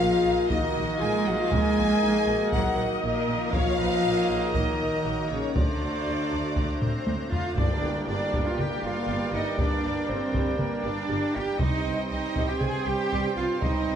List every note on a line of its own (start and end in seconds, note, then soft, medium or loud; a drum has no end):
0.00 0.08 A#1 medium
0.00 0.21 A#2 loud
0.00 3.50 D#3 medium
0.00 0.48 F3 loud
0.00 3.49 A#3 medium
0.00 3.51 A#3 medium
0.00 3.52 D#4 medium
0.00 0.47 F4 loud
0.00 0.51 G#4 medium
0.00 3.49 A#4 medium
0.00 3.50 D#5 medium
0.00 3.53 D#5 medium
0.00 0.46 F5 loud
0.00 0.47 F5 loud
0.25 0.33 A#1 medium
0.49 0.58 A#1 loud
0.49 1.01 D#3 medium
0.49 1.01 D#4 loud
0.49 1.01 F#4 loud
0.49 1.01 D#5 medium
0.49 1.02 D#5 loud
0.49 taiko medium
0.76 0.84 A#1 medium
0.99 1.09 A#1 medium
0.99 1.27 G#3 loud
0.99 2.02 F4 loud
0.99 1.26 G#4 loud
0.99 1.26 G#5 loud
1.26 1.34 A#1 medium
1.26 1.40 F#3 medium
1.26 1.40 F#4 loud
1.26 1.39 F#5 medium
1.26 1.40 F#5 medium
1.39 1.53 F3 medium
1.39 1.53 F4 loud
1.39 1.52 F5 loud
1.51 1.60 A#1 loud
1.51 2.53 G#3 loud
1.51 2.53 G#4 loud
1.51 2.52 G#5 loud
1.51 2.53 G#5 loud
1.51 taiko loud
1.77 1.85 A#1 medium
2.02 2.10 A#1 medium
2.02 2.28 D#4 medium
2.27 2.35 A#1 medium
2.27 2.53 F#4 medium
2.52 2.60 A#1 loud
2.52 3.03 F#3 medium
2.52 3.04 F#4 loud
2.52 2.79 A#4 loud
2.52 3.02 F#5 medium
2.52 3.03 F#5 loud
2.52 taiko medium
2.78 2.86 A#1 medium
2.78 3.54 D#5 loud
3.02 3.11 A#1 medium
3.02 3.53 A#2 loud
3.02 3.54 A#3 loud
3.02 3.52 A#4 loud
3.02 3.53 A#4 loud
3.28 3.36 A#1 medium
3.53 3.62 A#1 loud
3.53 4.55 F3 loud
3.53 7.28 F#3 loud
3.53 5.39 A#3 loud
3.53 5.51 A#3 medium
3.53 5.51 D#4 medium
3.53 4.55 F4 loud
3.53 5.51 A#4 medium
3.53 3.79 C#5 loud
3.53 5.52 D#5 loud
3.53 4.55 F5 loud
3.53 7.53 A#5 medium
3.53 taiko loud
3.79 3.87 A#1 medium
3.79 4.04 B4 medium
4.05 4.13 A#1 medium
4.05 4.30 A#4 medium
4.29 4.37 A#1 medium
4.29 4.55 G#4 medium
4.54 4.62 A#1 medium
4.54 5.31 D#3 medium
4.54 5.31 D#4 loud
4.54 5.06 A#4 loud
4.54 5.28 D#5 medium
4.54 5.29 D#5 medium
4.54 taiko medium
4.81 4.89 A#1 medium
5.05 5.13 A#1 medium
5.05 5.30 F#4 medium
5.29 5.39 A#1 medium
5.29 5.56 C#3 medium
5.29 5.56 C#4 medium
5.29 5.56 G#4 medium
5.29 5.55 C#5 medium
5.29 5.56 C#5 medium
5.54 5.64 D2 medium
5.54 6.80 D3 medium
5.54 7.28 A3 medium
5.54 7.58 A3 medium
5.54 7.32 D4 loud
5.54 7.57 D4 medium
5.54 7.29 F#4 medium
5.54 7.29 C5 medium
5.54 6.78 D5 medium
5.54 6.82 D5 medium
5.54 taiko loud
5.58 7.58 C5 medium
5.81 5.89 D2 medium
6.07 6.15 D2 medium
6.32 6.40 D2 medium
6.56 6.64 D2 medium
6.56 taiko medium
6.80 6.89 D2 medium
6.80 7.29 C4 medium
6.80 7.28 C5 medium
6.80 taiko low-mid medium
7.07 7.15 D2 medium
7.07 taiko high medium
7.32 7.40 D2 medium
7.32 7.57 F4 medium
7.32 7.57 F5 medium
7.32 7.58 F5 medium
7.32 taiko low medium
7.57 7.65 G1 medium
7.57 8.29 G2 medium
7.57 11.57 G2 medium
7.57 11.57 G3 medium
7.57 7.81 G3 medium
7.57 11.57 G3 medium
7.57 11.56 A#3 medium
7.57 11.57 A#3 medium
7.57 8.07 D4 medium
7.57 11.57 D4 medium
7.57 11.56 G4 medium
7.57 11.57 A#4 medium
7.57 8.06 D5 medium
7.57 8.05 D5 medium
7.57 11.57 D5 medium
7.57 11.57 G5 medium
7.57 taiko loud
7.57 tam-tam medium
7.82 7.90 G1 medium
7.82 7.92 G3 medium
8.07 8.17 G1 medium
8.07 8.18 G3 medium
8.07 8.45 D4 medium
8.07 8.44 D5 medium
8.34 8.42 G1 medium
8.34 8.57 G3 medium
8.34 taiko medium
8.45 8.59 F4 medium
8.45 8.58 F5 medium
8.45 8.59 F5 medium
8.58 8.66 G1 medium
8.58 8.66 G3 medium
8.58 8.84 G4 medium
8.58 8.83 G5 medium
8.58 taiko mid medium
8.83 8.91 G1 medium
8.83 8.92 G3 medium
8.83 9.34 F4 medium
8.83 9.33 F5 medium
9.08 9.16 G1 medium
9.08 9.32 G3 medium
9.34 9.42 G1 medium
9.34 9.43 G3 medium
9.34 9.59 D#4 medium
9.34 9.59 D#5 medium
9.58 9.67 G1 medium
9.58 9.82 G3 medium
9.58 10.09 D4 medium
9.58 10.08 D5 medium
9.58 10.10 D5 medium
9.58 taiko medium
9.85 9.93 G1 medium
9.85 9.93 G3 medium
10.08 10.17 G1 medium
10.08 10.16 G3 soft
10.08 10.60 C4 medium
10.08 10.59 C5 medium
10.08 10.60 C5 medium
10.34 10.42 G1 medium
10.34 10.58 G3 medium
10.34 taiko medium
10.59 10.67 G1 medium
10.59 10.68 G3 medium
10.59 10.84 A#3 medium
10.59 10.84 A#4 medium
10.59 10.85 A#4 medium
10.59 taiko mid medium
10.84 10.93 G1 medium
10.84 10.92 G3 medium
10.84 11.35 D4 loud
10.84 11.34 D5 medium
10.84 11.35 D5 medium
11.09 11.19 G1 medium
11.09 11.33 G3 medium
11.34 11.44 G1 medium
11.34 11.42 G3 medium
11.34 11.60 G4 loud
11.34 11.60 G5 medium
11.58 11.68 C2 medium
11.58 13.96 G2 medium
11.58 13.96 G3 medium
11.58 11.84 G3 medium
11.58 13.96 G3 medium
11.58 13.96 C4 medium
11.58 12.09 D#4 loud
11.58 13.96 G4 medium
11.58 13.96 C5 medium
11.58 12.09 D#5 medium
11.58 12.08 D#5 medium
11.58 13.96 G5 medium
11.58 taiko medium
11.63 13.96 C4 medium
11.85 11.94 C2 medium
11.85 11.93 G3 medium
12.09 12.20 C2 medium
12.09 12.19 G3 medium
12.09 12.48 D#4 medium
12.09 12.47 D#5 medium
12.36 12.44 C2 medium
12.36 12.59 G3 medium
12.36 taiko medium
12.47 12.62 G4 medium
12.47 12.61 G5 medium
12.60 12.70 C2 medium
12.60 12.70 G3 medium
12.60 12.86 G#4 loud
12.60 12.86 G#5 medium
12.60 taiko mid medium
12.85 12.94 C2 medium
12.85 12.95 G3 medium
12.85 13.37 G4 loud
12.85 13.35 G5 medium
12.85 13.37 G5 medium
13.12 13.20 C2 medium
13.12 13.35 G3 medium
13.37 13.45 C2 medium
13.37 13.47 G3 medium
13.37 13.62 F4 medium
13.37 13.62 F5 medium
13.62 13.70 C2 medium
13.62 13.86 G3 medium
13.62 13.96 D#4 loud
13.62 13.96 D#5 medium
13.62 taiko medium
13.87 13.95 C2 medium
13.87 13.96 G3 medium